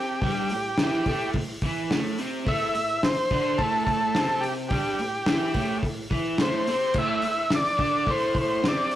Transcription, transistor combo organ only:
0.00 0.20 G4 medium
0.22 1.31 G4 medium
2.48 3.06 E5 loud
3.04 3.61 C5 loud
3.58 3.84 A4 medium
3.85 4.44 A4 loud
4.40 4.54 G4 medium
4.69 5.78 G4 medium
6.42 6.98 C5 medium
6.98 7.55 E5 loud
7.55 8.11 D5 loud
8.10 8.38 C5 medium
8.41 8.67 C5 medium
8.68 8.95 D5 medium

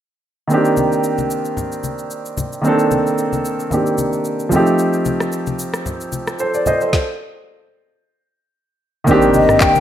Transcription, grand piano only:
0.47 2.59 D#3 medium
0.47 2.60 A#3 medium
0.47 2.61 C4 medium
0.52 2.62 D4 medium
0.52 2.62 G4 medium
2.61 3.68 D#3 medium
2.61 3.69 A#3 medium
2.61 3.70 C4 medium
2.66 3.70 D4 medium
2.66 3.71 A4 medium
3.70 4.51 D#3 medium
3.70 4.52 A#3 medium
3.70 4.51 C4 soft
3.70 4.53 D4 soft
3.70 4.53 G4 medium
4.49 6.61 F3 medium
4.49 6.62 A3 medium
4.49 6.63 C4 medium
4.54 6.63 D#4 medium
4.54 6.64 G4 medium
6.40 6.54 A4 medium
6.40 6.54 C5 medium
6.55 6.66 D5 medium
6.67 6.80 C5 medium
6.67 6.81 D#5 medium
6.82 7.07 A4 medium
6.82 7.07 C5 medium
9.04 9.80 D#3 medium
9.04 9.80 A#3 medium
9.04 9.80 C4 medium
9.09 9.80 D4 medium
9.09 9.80 G4 medium

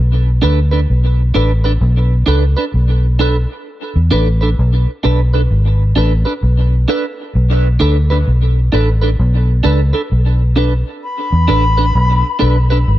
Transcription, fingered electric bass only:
0.00 0.40 B1 loud
0.43 0.85 D2 medium
0.90 1.32 B1 medium
1.36 1.78 A1 medium
1.81 2.23 B1 loud
2.28 2.54 C#2 medium
2.74 3.45 B1 loud
3.96 4.11 E2 medium
4.12 4.54 A1 loud
4.59 4.85 B1 loud
5.05 5.47 B1 loud
5.51 5.92 G#1 loud
5.97 6.23 A1 medium
6.43 6.85 B1 medium
7.35 7.77 B1 loud
7.81 8.23 D2 medium
8.28 8.69 B1 medium
8.73 9.15 A1 medium
9.20 9.61 B1 loud
9.65 9.92 C#2 medium
10.12 10.82 B1 loud
11.32 11.47 E2 loud
11.50 11.91 A1 loud
11.95 12.22 B1 medium
12.42 12.83 B1 medium
12.88 12.99 G#1 loud

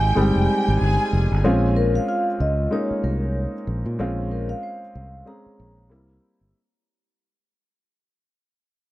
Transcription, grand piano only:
0.00 0.15 G#3 medium
0.00 0.16 C4 medium
0.00 0.16 D#4 medium
0.00 1.46 G4 medium
0.15 0.98 G3 medium
0.15 0.97 G#3 medium
0.15 0.98 C4 medium
0.15 0.98 D#4 medium
1.44 2.25 G#3 medium
1.44 2.26 C4 medium
1.44 2.26 C#4 medium
1.44 2.26 F4 medium
2.71 3.53 G#3 medium
2.71 3.53 A#3 medium
2.71 3.53 C#4 medium
2.71 3.53 D#4 medium
3.99 4.80 G#3 medium
3.99 4.81 C4 medium
3.99 4.81 C#4 medium
3.99 4.81 F4 medium
5.25 5.90 G#3 medium
5.25 5.89 C4 medium
5.25 5.90 C#4 medium
5.25 5.91 G#4 medium
5.90 6.43 G3 medium
5.90 6.43 A#3 medium
5.90 6.44 C4 medium
5.90 6.44 E4 medium

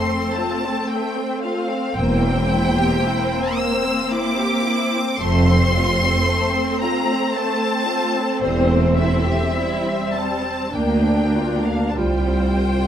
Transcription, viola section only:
0.00 1.96 A3 soft
0.00 1.96 C4 medium
1.97 5.20 A#3 medium
1.97 5.16 C4 medium
5.21 9.51 A3 medium
5.21 10.69 C4 medium
9.55 10.73 G3 medium
10.74 11.93 A#3 soft
10.74 11.93 D4 soft
11.96 12.87 G3 soft
11.96 12.87 F4 soft

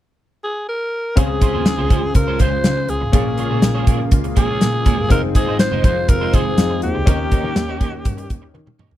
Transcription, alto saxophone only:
0.44 0.66 G#4 medium
0.69 1.19 A#4 medium
1.18 2.15 G#4 medium
2.16 2.42 A#4 medium
2.41 2.91 C5 loud
2.90 3.14 G#4 medium
3.15 4.09 G#4 medium
4.37 5.07 G#4 medium
5.12 5.22 A#4 loud
5.36 5.58 G#4 medium
5.60 5.83 C5 loud
5.85 6.11 C5 loud
6.10 6.36 A#4 loud
6.34 6.82 G#4 medium
6.83 8.51 G4 medium

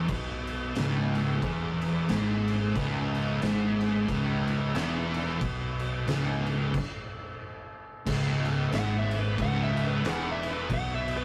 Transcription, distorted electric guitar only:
0.09 0.75 B2 loud
0.76 1.42 C#2 loud
1.42 2.08 E2 loud
2.09 2.75 G#2 loud
2.76 3.41 C#2 loud
3.42 4.08 G#2 loud
4.08 4.75 C#2 loud
4.75 5.40 E2 loud
5.41 6.06 B2 loud
6.07 6.73 C#2 loud
8.06 8.71 C#2 loud
8.73 9.37 G#2 loud
9.38 10.03 C#2 loud
10.04 10.69 E2 loud
10.70 11.25 B2 loud

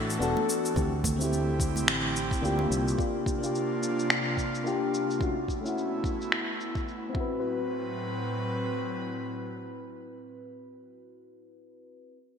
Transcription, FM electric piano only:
0.00 0.19 B3 medium
0.00 0.20 D4 medium
0.00 0.21 F#4 medium
0.00 0.23 A4 medium
0.19 0.36 B3 medium
0.19 0.36 D4 medium
0.19 0.37 F#4 medium
0.19 0.38 A4 loud
0.74 0.91 A3 medium
0.74 0.92 C4 medium
0.74 0.93 E4 medium
0.74 0.93 G4 medium
1.16 2.38 A3 medium
1.16 2.39 C4 medium
1.21 2.41 E4 medium
1.21 2.42 G4 medium
2.41 2.95 A#3 medium
2.41 2.95 D4 medium
2.41 2.96 F4 medium
2.41 2.97 G4 medium
2.97 3.37 A#3 medium
2.97 3.38 D4 medium
2.97 3.39 F4 medium
2.97 3.39 G4 medium
3.39 4.60 A#3 medium
3.39 4.62 D4 medium
3.44 4.63 F4 medium
3.44 4.64 G4 medium
4.64 4.80 A#3 medium
4.64 4.81 D4 medium
4.64 4.82 F4 medium
4.64 4.82 G4 medium
5.19 5.36 A3 medium
5.19 5.37 C#4 medium
5.19 5.37 E4 medium
5.19 5.38 F#4 medium
5.61 6.83 A3 medium
5.61 6.84 C#4 medium
5.66 6.85 E4 medium
5.66 6.86 F#4 medium
7.09 11.08 C4 medium
7.09 11.10 E4 medium
7.17 11.12 F#4 medium
7.17 11.14 B4 medium

